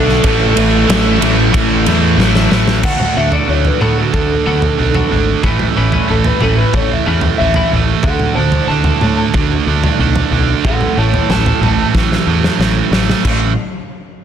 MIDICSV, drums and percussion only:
0, 0, Header, 1, 2, 480
1, 0, Start_track
1, 0, Key_signature, 3, "major"
1, 0, Tempo, 650759
1, 178, Time_signature, 4, 2, 24, 8
1, 10506, End_track
2, 0, Start_track
2, 0, Title_t, "Drums"
2, 64, Note_on_c, 9, 38, 38
2, 137, Note_off_c, 9, 38, 0
2, 175, Note_on_c, 9, 51, 113
2, 178, Note_on_c, 9, 36, 124
2, 248, Note_off_c, 9, 51, 0
2, 252, Note_off_c, 9, 36, 0
2, 419, Note_on_c, 9, 51, 88
2, 493, Note_off_c, 9, 51, 0
2, 660, Note_on_c, 9, 51, 117
2, 665, Note_on_c, 9, 38, 122
2, 734, Note_off_c, 9, 51, 0
2, 739, Note_off_c, 9, 38, 0
2, 901, Note_on_c, 9, 51, 83
2, 975, Note_off_c, 9, 51, 0
2, 1137, Note_on_c, 9, 36, 117
2, 1137, Note_on_c, 9, 51, 108
2, 1211, Note_off_c, 9, 36, 0
2, 1211, Note_off_c, 9, 51, 0
2, 1375, Note_on_c, 9, 51, 82
2, 1379, Note_on_c, 9, 38, 32
2, 1448, Note_off_c, 9, 51, 0
2, 1453, Note_off_c, 9, 38, 0
2, 1622, Note_on_c, 9, 38, 70
2, 1696, Note_off_c, 9, 38, 0
2, 1736, Note_on_c, 9, 38, 79
2, 1810, Note_off_c, 9, 38, 0
2, 1856, Note_on_c, 9, 38, 92
2, 1930, Note_off_c, 9, 38, 0
2, 1973, Note_on_c, 9, 38, 101
2, 2047, Note_off_c, 9, 38, 0
2, 2090, Note_on_c, 9, 43, 81
2, 2090, Note_on_c, 9, 49, 101
2, 2092, Note_on_c, 9, 36, 109
2, 2163, Note_off_c, 9, 43, 0
2, 2163, Note_off_c, 9, 49, 0
2, 2166, Note_off_c, 9, 36, 0
2, 2211, Note_on_c, 9, 47, 76
2, 2284, Note_off_c, 9, 47, 0
2, 2448, Note_on_c, 9, 43, 77
2, 2522, Note_off_c, 9, 43, 0
2, 2690, Note_on_c, 9, 43, 81
2, 2764, Note_off_c, 9, 43, 0
2, 2810, Note_on_c, 9, 47, 69
2, 2884, Note_off_c, 9, 47, 0
2, 3051, Note_on_c, 9, 43, 78
2, 3052, Note_on_c, 9, 36, 102
2, 3124, Note_off_c, 9, 43, 0
2, 3126, Note_off_c, 9, 36, 0
2, 3409, Note_on_c, 9, 43, 78
2, 3483, Note_off_c, 9, 43, 0
2, 3647, Note_on_c, 9, 43, 87
2, 3721, Note_off_c, 9, 43, 0
2, 4008, Note_on_c, 9, 43, 79
2, 4011, Note_on_c, 9, 36, 102
2, 4082, Note_off_c, 9, 43, 0
2, 4084, Note_off_c, 9, 36, 0
2, 4126, Note_on_c, 9, 47, 78
2, 4200, Note_off_c, 9, 47, 0
2, 4368, Note_on_c, 9, 43, 76
2, 4442, Note_off_c, 9, 43, 0
2, 4606, Note_on_c, 9, 43, 87
2, 4679, Note_off_c, 9, 43, 0
2, 4724, Note_on_c, 9, 47, 75
2, 4798, Note_off_c, 9, 47, 0
2, 4967, Note_on_c, 9, 43, 82
2, 4970, Note_on_c, 9, 36, 107
2, 5041, Note_off_c, 9, 43, 0
2, 5044, Note_off_c, 9, 36, 0
2, 5321, Note_on_c, 9, 43, 81
2, 5394, Note_off_c, 9, 43, 0
2, 5563, Note_on_c, 9, 43, 94
2, 5636, Note_off_c, 9, 43, 0
2, 5923, Note_on_c, 9, 43, 85
2, 5930, Note_on_c, 9, 36, 107
2, 5996, Note_off_c, 9, 43, 0
2, 6003, Note_off_c, 9, 36, 0
2, 6044, Note_on_c, 9, 47, 78
2, 6118, Note_off_c, 9, 47, 0
2, 6283, Note_on_c, 9, 43, 82
2, 6357, Note_off_c, 9, 43, 0
2, 6520, Note_on_c, 9, 43, 89
2, 6594, Note_off_c, 9, 43, 0
2, 6647, Note_on_c, 9, 47, 75
2, 6721, Note_off_c, 9, 47, 0
2, 6887, Note_on_c, 9, 43, 87
2, 6891, Note_on_c, 9, 36, 114
2, 6960, Note_off_c, 9, 43, 0
2, 6965, Note_off_c, 9, 36, 0
2, 7255, Note_on_c, 9, 43, 85
2, 7328, Note_off_c, 9, 43, 0
2, 7491, Note_on_c, 9, 43, 90
2, 7564, Note_off_c, 9, 43, 0
2, 7853, Note_on_c, 9, 36, 102
2, 7853, Note_on_c, 9, 43, 82
2, 7927, Note_off_c, 9, 36, 0
2, 7927, Note_off_c, 9, 43, 0
2, 7971, Note_on_c, 9, 47, 73
2, 8045, Note_off_c, 9, 47, 0
2, 8215, Note_on_c, 9, 43, 83
2, 8289, Note_off_c, 9, 43, 0
2, 8333, Note_on_c, 9, 47, 77
2, 8338, Note_on_c, 9, 38, 81
2, 8407, Note_off_c, 9, 47, 0
2, 8411, Note_off_c, 9, 38, 0
2, 8454, Note_on_c, 9, 43, 90
2, 8528, Note_off_c, 9, 43, 0
2, 8579, Note_on_c, 9, 47, 74
2, 8653, Note_off_c, 9, 47, 0
2, 8812, Note_on_c, 9, 36, 116
2, 8820, Note_on_c, 9, 38, 58
2, 8885, Note_off_c, 9, 36, 0
2, 8894, Note_off_c, 9, 38, 0
2, 8941, Note_on_c, 9, 38, 54
2, 9015, Note_off_c, 9, 38, 0
2, 9178, Note_on_c, 9, 38, 67
2, 9252, Note_off_c, 9, 38, 0
2, 9298, Note_on_c, 9, 38, 82
2, 9372, Note_off_c, 9, 38, 0
2, 9537, Note_on_c, 9, 38, 93
2, 9610, Note_off_c, 9, 38, 0
2, 9659, Note_on_c, 9, 38, 89
2, 9733, Note_off_c, 9, 38, 0
2, 9772, Note_on_c, 9, 36, 103
2, 9772, Note_on_c, 9, 49, 87
2, 9846, Note_off_c, 9, 36, 0
2, 9846, Note_off_c, 9, 49, 0
2, 10506, End_track
0, 0, End_of_file